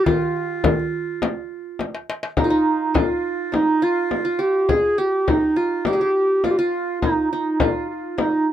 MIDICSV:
0, 0, Header, 1, 5, 480
1, 0, Start_track
1, 0, Tempo, 580833
1, 47, Time_signature, 4, 2, 24, 8
1, 7048, End_track
2, 0, Start_track
2, 0, Title_t, "Clarinet"
2, 0, Program_c, 0, 71
2, 33, Note_on_c, 0, 65, 84
2, 1719, Note_off_c, 0, 65, 0
2, 1976, Note_on_c, 0, 63, 81
2, 2462, Note_on_c, 0, 65, 88
2, 2474, Note_off_c, 0, 63, 0
2, 2938, Note_on_c, 0, 63, 94
2, 2951, Note_off_c, 0, 65, 0
2, 3176, Note_on_c, 0, 65, 104
2, 3188, Note_off_c, 0, 63, 0
2, 3644, Note_off_c, 0, 65, 0
2, 3649, Note_on_c, 0, 67, 83
2, 3894, Note_on_c, 0, 68, 93
2, 3906, Note_off_c, 0, 67, 0
2, 4126, Note_on_c, 0, 67, 83
2, 4138, Note_off_c, 0, 68, 0
2, 4374, Note_on_c, 0, 63, 85
2, 4386, Note_off_c, 0, 67, 0
2, 4606, Note_on_c, 0, 65, 83
2, 4618, Note_off_c, 0, 63, 0
2, 4847, Note_on_c, 0, 67, 95
2, 4859, Note_off_c, 0, 65, 0
2, 5327, Note_on_c, 0, 65, 80
2, 5340, Note_off_c, 0, 67, 0
2, 5375, Note_on_c, 0, 67, 74
2, 5388, Note_off_c, 0, 65, 0
2, 5437, Note_on_c, 0, 65, 87
2, 5449, Note_off_c, 0, 67, 0
2, 5791, Note_off_c, 0, 65, 0
2, 5796, Note_on_c, 0, 63, 85
2, 6024, Note_off_c, 0, 63, 0
2, 6043, Note_on_c, 0, 63, 74
2, 6282, Note_on_c, 0, 65, 84
2, 6295, Note_off_c, 0, 63, 0
2, 6524, Note_off_c, 0, 65, 0
2, 6533, Note_on_c, 0, 65, 71
2, 6766, Note_on_c, 0, 63, 83
2, 6778, Note_off_c, 0, 65, 0
2, 7005, Note_off_c, 0, 63, 0
2, 7048, End_track
3, 0, Start_track
3, 0, Title_t, "Qanun"
3, 0, Program_c, 1, 107
3, 0, Note_on_c, 1, 67, 55
3, 53, Note_on_c, 1, 65, 71
3, 1032, Note_off_c, 1, 67, 0
3, 1696, Note_off_c, 1, 65, 0
3, 1962, Note_on_c, 1, 63, 68
3, 2018, Note_on_c, 1, 65, 65
3, 2065, Note_off_c, 1, 63, 0
3, 2069, Note_on_c, 1, 63, 72
3, 2429, Note_off_c, 1, 65, 0
3, 2433, Note_on_c, 1, 65, 74
3, 2907, Note_off_c, 1, 63, 0
3, 2910, Note_on_c, 1, 63, 57
3, 3155, Note_off_c, 1, 65, 0
3, 3158, Note_on_c, 1, 65, 81
3, 3507, Note_off_c, 1, 65, 0
3, 3510, Note_on_c, 1, 65, 75
3, 3626, Note_on_c, 1, 67, 75
3, 3877, Note_on_c, 1, 68, 86
3, 3927, Note_off_c, 1, 67, 0
3, 4104, Note_off_c, 1, 63, 0
3, 4116, Note_on_c, 1, 67, 81
3, 4166, Note_off_c, 1, 68, 0
3, 4360, Note_on_c, 1, 63, 66
3, 4594, Note_off_c, 1, 65, 0
3, 4598, Note_on_c, 1, 65, 72
3, 4843, Note_off_c, 1, 67, 0
3, 4847, Note_on_c, 1, 67, 73
3, 4901, Note_on_c, 1, 68, 63
3, 4950, Note_off_c, 1, 67, 0
3, 4966, Note_on_c, 1, 67, 66
3, 5015, Note_off_c, 1, 68, 0
3, 5321, Note_off_c, 1, 65, 0
3, 5325, Note_on_c, 1, 65, 72
3, 5440, Note_off_c, 1, 65, 0
3, 5443, Note_on_c, 1, 65, 84
3, 5553, Note_off_c, 1, 63, 0
3, 5810, Note_on_c, 1, 63, 66
3, 6014, Note_off_c, 1, 67, 0
3, 6051, Note_off_c, 1, 63, 0
3, 6055, Note_on_c, 1, 63, 68
3, 6286, Note_off_c, 1, 65, 0
3, 6289, Note_on_c, 1, 65, 66
3, 6754, Note_off_c, 1, 63, 0
3, 6757, Note_on_c, 1, 63, 52
3, 7048, Note_off_c, 1, 63, 0
3, 7048, Note_off_c, 1, 65, 0
3, 7048, End_track
4, 0, Start_track
4, 0, Title_t, "Darbuka"
4, 53, Note_on_c, 9, 64, 99
4, 135, Note_off_c, 9, 64, 0
4, 178, Note_on_c, 9, 62, 31
4, 261, Note_off_c, 9, 62, 0
4, 301, Note_on_c, 9, 62, 24
4, 384, Note_off_c, 9, 62, 0
4, 533, Note_on_c, 9, 64, 88
4, 616, Note_off_c, 9, 64, 0
4, 656, Note_on_c, 9, 62, 27
4, 739, Note_off_c, 9, 62, 0
4, 1015, Note_on_c, 9, 63, 64
4, 1098, Note_off_c, 9, 63, 0
4, 1493, Note_on_c, 9, 63, 49
4, 1576, Note_off_c, 9, 63, 0
4, 1608, Note_on_c, 9, 62, 64
4, 1691, Note_off_c, 9, 62, 0
4, 1732, Note_on_c, 9, 63, 77
4, 1815, Note_off_c, 9, 63, 0
4, 1843, Note_on_c, 9, 62, 86
4, 1926, Note_off_c, 9, 62, 0
4, 7048, End_track
5, 0, Start_track
5, 0, Title_t, "Frame drum"
5, 52, Note_on_c, 9, 64, 79
5, 135, Note_off_c, 9, 64, 0
5, 528, Note_on_c, 9, 64, 94
5, 610, Note_off_c, 9, 64, 0
5, 1008, Note_on_c, 9, 64, 78
5, 1091, Note_off_c, 9, 64, 0
5, 1482, Note_on_c, 9, 64, 65
5, 1564, Note_off_c, 9, 64, 0
5, 1957, Note_on_c, 9, 64, 97
5, 2040, Note_off_c, 9, 64, 0
5, 2438, Note_on_c, 9, 64, 97
5, 2520, Note_off_c, 9, 64, 0
5, 2923, Note_on_c, 9, 64, 82
5, 3005, Note_off_c, 9, 64, 0
5, 3398, Note_on_c, 9, 64, 67
5, 3480, Note_off_c, 9, 64, 0
5, 3874, Note_on_c, 9, 64, 81
5, 3957, Note_off_c, 9, 64, 0
5, 4361, Note_on_c, 9, 64, 90
5, 4444, Note_off_c, 9, 64, 0
5, 4835, Note_on_c, 9, 64, 82
5, 4917, Note_off_c, 9, 64, 0
5, 5321, Note_on_c, 9, 64, 69
5, 5404, Note_off_c, 9, 64, 0
5, 5805, Note_on_c, 9, 64, 86
5, 5888, Note_off_c, 9, 64, 0
5, 6280, Note_on_c, 9, 64, 100
5, 6362, Note_off_c, 9, 64, 0
5, 6764, Note_on_c, 9, 64, 78
5, 6846, Note_off_c, 9, 64, 0
5, 7048, End_track
0, 0, End_of_file